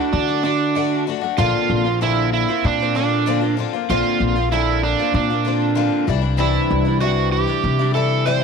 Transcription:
Already playing: F#4
0.00 A3 D4
0.13 D3 D4
0.28 A3 D4 F#4
0.43 D3 A3 D4 F#4
0.75 D3 A3 D4 F#4
1.07 D3 A3 D4 F#4
1.21 A3 D4 F#4
1.37 A#1 A#2 D3 A#3 C4 F4
1.70 A#1
1.85 A#3 C4 F4
2.01 A#2 D3 A#3 C4 E4
2.33 E4
2.49 A#3 C4 F4
2.64 A#2 D4
2.80 A#3 C4 F4
2.95 D3 A#3 C4 D4 F4
3.26 A#2 D3 A#3 C4 F4
3.41 A#3 C4 F4
3.57 D3 A#3 C4 F4
3.73 A#3 C4 F4
3.89 A#1 A#2 D3 A#3 C4 F4
4.20 A#1
4.36 A#3 C4 F4
4.52 A#2 D3 A#3 C4 E4
4.83 D4
4.99 A#3 C4 F4
5.14 A#2 D4
5.30 A#3 C4 F4
5.45 D3 A#3 C4 F4
5.75 A#2 D3 A#3 C4 F4
6.07 C2 E3 G3 D4 E4
6.22 G3 D4 E4
6.37 C3 E3 G3 D4 E4
6.71 C2
6.85 G3 D4 E4
7.00 C3 E3 G3 D4 E4 F#4
7.32 G4
7.47 G3 D4 E4
7.64 C3
7.79 G3 D4 E4
7.94 E3 G3 D4 E4 A4
8.26 C3 E3 G3 D4 E4 C5
8.40 E4

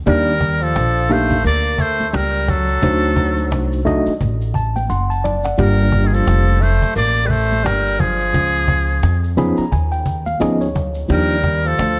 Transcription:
0.06 D#2 G3 A#3 D4 D#4 G4 A#4 D5, cajon bass, maracas
0.28 maracas
0.41 cajon bass, high conga, maracas
0.61 F3 A4, cajon slap, maracas
0.76 A#1, cajon slap, maracas
0.97 maracas
1.10 A3 A#3 D4 D#4 G4 C5 F5, low conga, maracas
1.31 cajon bass, cajon slap, maracas
1.44 D2 A#3 D5, maracas
1.65 maracas
1.78 A3 C5, cajon bass, maracas
1.99 cajon slap, high conga, maracas
2.09 A3 C5
2.13 C#2 G3 A#4, cajon slap, maracas
2.34 maracas
2.48 F#3 A4, cajon bass, low conga, maracas
2.68 cajon slap, maracas
2.82 D2 A3 D4 D#4 F#4 C5, cajon bass, maracas
3.04 maracas
3.16 cajon bass, cajon slap, high conga, maracas
3.37 cajon slap, maracas
3.51 C2, cajon slap, maracas
3.73 maracas
3.85 A3 D4 D#4 F#4 D#5, cajon bass, low conga, maracas
4.06 muted upright bass stroke, cajon slap, maracas
4.21 A1, cajon bass, maracas
4.42 maracas
4.54 A5, cajon bass, maracas
4.75 G5, cajon slap, high conga, maracas
4.90 F#1 F#5 C6, cajon slap, maracas
5.10 A5, maracas
5.24 D5, cajon slap, low conga, maracas
5.44 F#5, cajon slap, maracas
5.58 G1 G3 A#3 D4 F4 G4 A#4, cajon bass, maracas
5.80 maracas
5.92 cajon bass, high conga, maracas
6.05 D#3 G#4
6.12 F3 A4, cajon slap, maracas
6.27 F1, cajon slap, maracas
6.49 maracas
6.61 A3 C5, low conga, maracas
6.82 muted upright bass stroke, cajon bass, cajon slap, maracas
6.95 A1 A#3 D5, cajon slap, maracas
7.18 maracas
7.25 G3 B4
7.29 A3 C5, cajon bass, maracas
7.51 cajon slap, high conga, maracas
7.64 G1 G3 A#4, cajon slap, maracas
7.87 maracas
7.99 F3 G#4, cajon bass, low conga, maracas
8.20 cajon slap, maracas
8.34 C#2, cajon bass, maracas
8.55 maracas
8.68 cajon bass, high conga, maracas
8.88 cajon slap, maracas
9.03 F2, cajon slap, maracas
9.24 maracas
9.37 F3 B3 C#4 D#4 G#4 B5, cajon bass, low conga, maracas
9.57 A#5, muted upright bass stroke, cajon slap, maracas
9.72 D#2 G#5, cajon bass, maracas
9.92 G5, maracas
10.06 cajon bass, maracas
10.26 F5, cajon slap, high conga, maracas
10.40 D2 F3 B3 C#4 D#4 G#4 D#5, cajon slap, maracas
10.61 C#5, maracas
10.75 cajon bass, low conga, maracas
10.95 cajon slap, maracas
11.08 D#2 F3 G3 A#3 D4 D#4 G4, cajon bass, maracas
11.13 A#4
11.30 maracas
11.44 cajon bass, high conga, maracas
11.64 F3 A4, cajon slap, maracas
11.78 D2, cajon slap, maracas

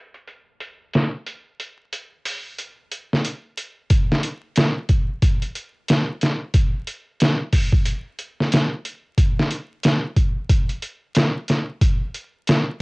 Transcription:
0.14 closed hi-hat
0.27 closed hi-hat
0.60 closed hi-hat
0.93 snare, closed hi-hat
1.26 closed hi-hat
1.60 closed hi-hat
1.93 closed hi-hat
2.26 open hi-hat
2.59 closed hi-hat
2.92 closed hi-hat
3.13 snare
3.25 closed hi-hat
3.58 closed hi-hat
3.90 kick, closed hi-hat
4.12 snare
4.23 closed hi-hat
4.56 snare, closed hi-hat
4.89 kick, closed hi-hat
5.22 kick, closed hi-hat
5.42 closed hi-hat
5.55 closed hi-hat
5.88 snare, closed hi-hat
6.21 snare, closed hi-hat
6.54 kick, closed hi-hat
6.87 closed hi-hat
7.20 snare, closed hi-hat
7.53 kick, open hi-hat
7.73 kick
7.86 closed hi-hat
8.19 closed hi-hat
8.40 snare
8.52 snare, closed hi-hat
8.85 closed hi-hat
9.18 kick, closed hi-hat
9.39 snare
9.51 closed hi-hat
9.84 snare, closed hi-hat
10.17 kick, closed hi-hat
10.49 kick, closed hi-hat
10.69 closed hi-hat
10.82 closed hi-hat
11.15 snare, closed hi-hat
11.48 snare, closed hi-hat
11.81 kick, closed hi-hat
12.14 closed hi-hat
12.47 snare, closed hi-hat

